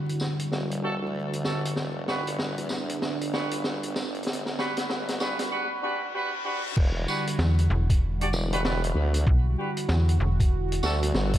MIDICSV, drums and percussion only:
0, 0, Header, 1, 2, 480
1, 0, Start_track
1, 0, Key_signature, 1, "minor"
1, 0, Tempo, 625000
1, 1359, Time_signature, 4, 2, 24, 8
1, 8741, End_track
2, 0, Start_track
2, 0, Title_t, "Drums"
2, 71, Note_on_c, 9, 42, 54
2, 148, Note_off_c, 9, 42, 0
2, 151, Note_on_c, 9, 54, 60
2, 159, Note_on_c, 9, 38, 63
2, 228, Note_off_c, 9, 54, 0
2, 236, Note_off_c, 9, 38, 0
2, 304, Note_on_c, 9, 42, 71
2, 380, Note_off_c, 9, 42, 0
2, 400, Note_on_c, 9, 38, 70
2, 477, Note_off_c, 9, 38, 0
2, 548, Note_on_c, 9, 42, 65
2, 625, Note_off_c, 9, 42, 0
2, 1024, Note_on_c, 9, 42, 62
2, 1101, Note_off_c, 9, 42, 0
2, 1108, Note_on_c, 9, 38, 78
2, 1117, Note_on_c, 9, 54, 55
2, 1185, Note_off_c, 9, 38, 0
2, 1194, Note_off_c, 9, 54, 0
2, 1269, Note_on_c, 9, 42, 89
2, 1346, Note_off_c, 9, 42, 0
2, 1352, Note_on_c, 9, 38, 67
2, 1428, Note_off_c, 9, 38, 0
2, 1595, Note_on_c, 9, 38, 80
2, 1672, Note_off_c, 9, 38, 0
2, 1744, Note_on_c, 9, 42, 75
2, 1821, Note_off_c, 9, 42, 0
2, 1834, Note_on_c, 9, 38, 84
2, 1911, Note_off_c, 9, 38, 0
2, 1980, Note_on_c, 9, 42, 60
2, 2056, Note_off_c, 9, 42, 0
2, 2067, Note_on_c, 9, 54, 55
2, 2074, Note_on_c, 9, 38, 79
2, 2144, Note_off_c, 9, 54, 0
2, 2151, Note_off_c, 9, 38, 0
2, 2223, Note_on_c, 9, 42, 82
2, 2300, Note_off_c, 9, 42, 0
2, 2318, Note_on_c, 9, 38, 89
2, 2395, Note_off_c, 9, 38, 0
2, 2468, Note_on_c, 9, 42, 68
2, 2545, Note_off_c, 9, 42, 0
2, 2560, Note_on_c, 9, 38, 91
2, 2636, Note_off_c, 9, 38, 0
2, 2698, Note_on_c, 9, 42, 81
2, 2775, Note_off_c, 9, 42, 0
2, 2795, Note_on_c, 9, 38, 88
2, 2872, Note_off_c, 9, 38, 0
2, 2942, Note_on_c, 9, 42, 63
2, 3019, Note_off_c, 9, 42, 0
2, 3038, Note_on_c, 9, 38, 83
2, 3040, Note_on_c, 9, 54, 56
2, 3115, Note_off_c, 9, 38, 0
2, 3117, Note_off_c, 9, 54, 0
2, 3184, Note_on_c, 9, 42, 33
2, 3247, Note_off_c, 9, 42, 0
2, 3247, Note_on_c, 9, 42, 46
2, 3276, Note_on_c, 9, 38, 96
2, 3324, Note_off_c, 9, 42, 0
2, 3326, Note_on_c, 9, 42, 59
2, 3352, Note_off_c, 9, 38, 0
2, 3402, Note_off_c, 9, 42, 0
2, 3425, Note_on_c, 9, 38, 74
2, 3501, Note_off_c, 9, 38, 0
2, 3522, Note_on_c, 9, 38, 100
2, 3599, Note_off_c, 9, 38, 0
2, 3661, Note_on_c, 9, 42, 80
2, 3666, Note_on_c, 9, 38, 87
2, 3738, Note_off_c, 9, 42, 0
2, 3743, Note_off_c, 9, 38, 0
2, 3759, Note_on_c, 9, 38, 106
2, 3836, Note_off_c, 9, 38, 0
2, 3905, Note_on_c, 9, 42, 54
2, 3907, Note_on_c, 9, 38, 88
2, 3981, Note_off_c, 9, 42, 0
2, 3984, Note_off_c, 9, 38, 0
2, 3995, Note_on_c, 9, 54, 58
2, 3997, Note_on_c, 9, 38, 97
2, 4072, Note_off_c, 9, 54, 0
2, 4074, Note_off_c, 9, 38, 0
2, 4140, Note_on_c, 9, 38, 91
2, 4140, Note_on_c, 9, 42, 78
2, 4216, Note_off_c, 9, 42, 0
2, 4217, Note_off_c, 9, 38, 0
2, 5197, Note_on_c, 9, 36, 118
2, 5199, Note_on_c, 9, 49, 105
2, 5274, Note_off_c, 9, 36, 0
2, 5276, Note_off_c, 9, 49, 0
2, 5439, Note_on_c, 9, 54, 63
2, 5515, Note_off_c, 9, 54, 0
2, 5586, Note_on_c, 9, 42, 77
2, 5663, Note_off_c, 9, 42, 0
2, 5674, Note_on_c, 9, 38, 120
2, 5751, Note_off_c, 9, 38, 0
2, 5826, Note_on_c, 9, 42, 58
2, 5903, Note_off_c, 9, 42, 0
2, 6065, Note_on_c, 9, 36, 105
2, 6066, Note_on_c, 9, 42, 84
2, 6142, Note_off_c, 9, 36, 0
2, 6142, Note_off_c, 9, 42, 0
2, 6306, Note_on_c, 9, 42, 67
2, 6383, Note_off_c, 9, 42, 0
2, 6398, Note_on_c, 9, 54, 58
2, 6475, Note_off_c, 9, 54, 0
2, 6548, Note_on_c, 9, 42, 77
2, 6625, Note_off_c, 9, 42, 0
2, 6641, Note_on_c, 9, 38, 121
2, 6717, Note_off_c, 9, 38, 0
2, 6787, Note_on_c, 9, 42, 66
2, 6864, Note_off_c, 9, 42, 0
2, 7019, Note_on_c, 9, 42, 84
2, 7095, Note_off_c, 9, 42, 0
2, 7117, Note_on_c, 9, 36, 123
2, 7194, Note_off_c, 9, 36, 0
2, 7502, Note_on_c, 9, 42, 77
2, 7579, Note_off_c, 9, 42, 0
2, 7593, Note_on_c, 9, 38, 127
2, 7669, Note_off_c, 9, 38, 0
2, 7747, Note_on_c, 9, 42, 57
2, 7823, Note_off_c, 9, 42, 0
2, 7986, Note_on_c, 9, 36, 110
2, 7988, Note_on_c, 9, 42, 74
2, 8063, Note_off_c, 9, 36, 0
2, 8064, Note_off_c, 9, 42, 0
2, 8232, Note_on_c, 9, 42, 75
2, 8309, Note_off_c, 9, 42, 0
2, 8317, Note_on_c, 9, 54, 65
2, 8320, Note_on_c, 9, 38, 42
2, 8394, Note_off_c, 9, 54, 0
2, 8397, Note_off_c, 9, 38, 0
2, 8469, Note_on_c, 9, 42, 82
2, 8546, Note_off_c, 9, 42, 0
2, 8558, Note_on_c, 9, 38, 123
2, 8635, Note_off_c, 9, 38, 0
2, 8705, Note_on_c, 9, 42, 61
2, 8707, Note_on_c, 9, 36, 64
2, 8741, Note_off_c, 9, 36, 0
2, 8741, Note_off_c, 9, 42, 0
2, 8741, End_track
0, 0, End_of_file